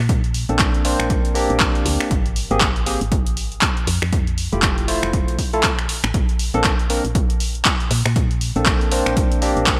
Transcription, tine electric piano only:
0.49 0.82 A#3 medium
0.49 0.82 C4 medium
0.49 0.82 D4 medium
0.49 0.82 A4 medium
0.85 1.33 A#3 medium
0.85 1.33 C4 medium
0.85 1.33 D4 medium
0.85 1.33 C5 medium
1.35 2.09 A#3 medium
1.35 2.10 C4 medium
1.35 2.10 D4 medium
1.35 2.10 G4 loud
2.51 2.67 A#3 medium
2.51 2.67 C4 medium
2.51 2.67 G4 medium
2.51 2.67 G#4 loud
2.86 2.99 A#3 medium
2.86 2.99 C4 medium
2.86 2.99 G4 medium
2.86 2.99 G#4 loud
4.52 4.86 A3 medium
4.52 4.86 E4 medium
4.52 4.86 F4 medium
4.52 4.86 G4 medium
4.88 5.36 A3 medium
4.88 5.36 E4 medium
4.88 5.36 F4 medium
4.88 5.36 C5 medium
5.53 5.69 A3 medium
5.53 5.69 E4 medium
5.53 5.69 F4 medium
5.53 5.70 A4 loud
6.54 6.70 A#3 medium
6.54 6.70 C4 medium
6.54 6.70 D4 medium
6.54 6.70 A4 loud
6.90 7.02 A#3 medium
6.90 7.03 C4 medium
6.90 7.03 D4 medium
6.90 7.03 A#4 medium
8.56 8.89 A#3 medium
8.56 8.89 C4 medium
8.56 8.89 D4 medium
8.56 8.89 A4 medium
8.91 9.39 A#3 medium
8.91 9.39 C4 medium
8.91 9.40 D4 medium
8.91 9.40 C5 medium
9.41 9.80 A#3 medium
9.41 9.80 C4 medium
9.41 9.80 D4 medium
9.41 9.80 G4 medium

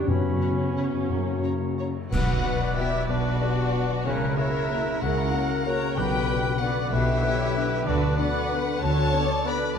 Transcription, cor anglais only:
0.00 0.82 C#5 medium
1.11 1.92 C#5 medium
2.13 2.80 F#4 medium
2.78 3.12 E4 medium
3.10 4.05 D4 medium
4.05 4.39 C#4 medium
4.38 5.03 E4 medium
5.02 5.66 F#4 medium
5.66 5.99 A#4 medium
5.98 6.63 G4 loud
6.61 6.95 F#4 medium
6.93 7.88 E4 medium
7.87 8.20 D4 medium
8.18 8.61 F#4 medium
8.82 9.48 A4 loud
9.46 9.77 B4 medium

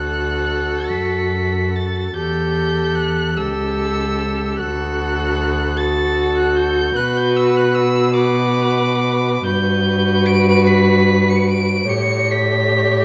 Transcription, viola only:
0.00 2.12 F#4 medium
2.16 3.34 G4 medium
3.37 4.61 G4 medium
4.59 5.77 F#4 medium
5.78 6.94 F#4 loud
6.96 8.12 F#4 loud
8.15 9.42 F#4 loud
9.45 11.85 F#4 loud
11.89 13.05 G4 loud

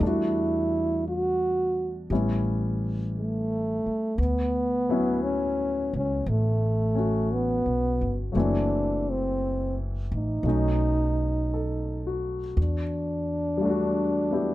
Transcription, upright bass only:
0.00 2.06 E2 medium
2.10 3.81 A1 medium
3.86 muted upright bass stroke soft
4.18 5.89 D2 medium
5.93 6.24 C#2 medium
6.26 7.61 A1 medium
7.66 7.98 B1 medium
8.01 8.33 G1 medium
8.35 10.07 F#1 medium
10.12 10.42 A1 medium
10.43 12.52 B1 medium
12.57 14.55 E2 medium

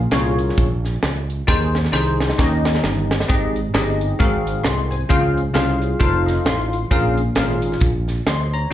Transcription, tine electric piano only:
0.00 0.35 A#2 medium
0.12 0.65 C#4 loud
0.12 0.65 F4 medium
0.12 0.65 G#4 medium
0.12 0.65 A#4 medium
0.12 0.66 C#5 loud
1.47 2.16 D#3 medium
1.47 1.77 D#4 loud
1.47 1.77 G#4 medium
1.47 1.78 C5 loud
1.92 2.37 D#4 loud
1.92 2.38 G#4 medium
1.92 2.39 C5 loud
2.38 3.06 D#3 medium
2.38 3.14 C#4 medium
2.38 3.14 D#4 medium
2.38 3.14 G4 medium
2.38 3.14 A#4 medium
2.38 2.45 C#5 medium
2.44 3.17 D#5 loud
3.28 3.97 G#2 medium
3.28 3.58 C4 medium
3.28 3.58 D#4 medium
3.28 3.58 G4 medium
3.28 3.58 G#4 medium
3.28 3.59 D#5 loud
3.74 4.18 C4 medium
3.74 4.19 D#4 medium
3.74 4.20 G4 medium
3.74 4.18 G#4 medium
3.74 4.20 D#5 loud
4.19 4.87 G#2 medium
4.19 4.95 C4 medium
4.19 4.95 F#4 medium
4.19 4.95 G#4 medium
4.19 4.95 A#4 medium
4.19 4.65 F5 loud
4.64 4.90 D#5 medium
4.64 4.89 C6 medium
4.91 5.08 C5 medium
4.91 5.34 G#5 medium
5.09 5.77 C#3 medium
5.09 5.39 C#4 loud
5.09 5.39 F4 medium
5.09 5.39 G#4 medium
5.09 5.39 C5 medium
5.09 5.39 F5 loud
5.54 6.00 C#4 medium
5.54 5.98 F4 medium
5.54 6.00 G#4 medium
5.54 5.98 C5 medium
5.54 5.99 F5 loud
6.00 6.76 D#4 medium
6.00 6.76 F4 medium
6.00 6.76 A4 medium
6.00 6.76 C5 medium
6.00 6.76 F5 loud
6.26 6.44 D#5 medium
6.46 6.88 C6 medium
6.91 7.59 A#2 medium
6.91 7.20 C#4 loud
6.91 7.20 F4 medium
6.91 7.20 G#4 medium
6.91 7.21 A#4 medium
6.91 7.21 F5 loud
7.36 7.89 C#4 medium
7.36 7.89 F4 medium
7.36 7.90 G#4 medium
7.36 7.89 A#4 medium
7.36 7.90 F5 medium
8.27 8.52 D#5 medium
8.27 8.52 C6 medium
8.54 8.73 C#5 medium
8.54 8.73 A#5 medium

